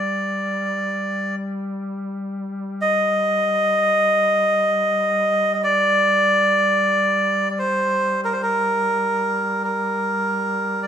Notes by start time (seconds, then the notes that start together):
Already playing: G3 D5
2.81 D#5
5.54 D#5
5.64 D5
7.50 D5
7.59 C5
8.25 A#4
8.33 C5
8.43 A#4
9.64 A#4
10.83 D5